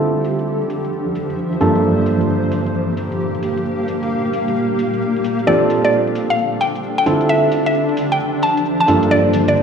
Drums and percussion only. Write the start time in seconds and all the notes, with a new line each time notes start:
0.02 cabasa
0.25 open hi-hat, cabasa
0.39 closed hi-hat, cabasa
0.47 cabasa
0.62 closed hi-hat
0.70 open hi-hat, cabasa
0.85 closed hi-hat, cabasa
0.93 cabasa
1.15 open hi-hat, cabasa
1.30 closed hi-hat, cabasa
1.38 cabasa
1.53 closed hi-hat
1.61 open hi-hat, cabasa
1.75 closed hi-hat, cabasa
1.84 cabasa
2.06 open hi-hat, cabasa
2.21 closed hi-hat, cabasa
2.29 cabasa
2.44 closed hi-hat
2.52 open hi-hat, cabasa
2.66 closed hi-hat, cabasa
2.74 cabasa
2.97 open hi-hat, cabasa
3.12 closed hi-hat, cabasa
3.20 cabasa
3.35 closed hi-hat
3.43 open hi-hat, cabasa
3.57 closed hi-hat, cabasa
3.66 cabasa
3.88 open hi-hat, cabasa
4.03 closed hi-hat, cabasa
4.11 cabasa
4.25 closed hi-hat
4.33 open hi-hat, cabasa
4.48 closed hi-hat, cabasa
4.56 cabasa
4.79 open hi-hat, cabasa
4.94 closed hi-hat, cabasa
5.02 cabasa
5.16 closed hi-hat
5.24 open hi-hat, cabasa
5.39 closed hi-hat, cabasa
5.47 cabasa
5.70 open hi-hat, cabasa
5.85 closed hi-hat, cabasa
5.93 cabasa
6.07 closed hi-hat
6.15 open hi-hat, cabasa
6.30 closed hi-hat, cabasa
6.38 cabasa
6.61 open hi-hat, cabasa
6.75 closed hi-hat, cabasa
6.83 cabasa
6.98 closed hi-hat
7.06 open hi-hat, cabasa
7.21 closed hi-hat, cabasa
7.52 open hi-hat, cabasa
7.66 closed hi-hat, cabasa
7.74 cabasa
7.89 closed hi-hat
7.97 open hi-hat, cabasa
8.12 closed hi-hat, cabasa
8.20 cabasa
8.43 open hi-hat, cabasa
8.57 closed hi-hat, cabasa
8.65 cabasa
8.80 closed hi-hat
8.88 open hi-hat, cabasa
9.03 closed hi-hat, cabasa
9.11 cabasa
9.33 open hi-hat, cabasa
9.48 closed hi-hat, cabasa
9.56 cabasa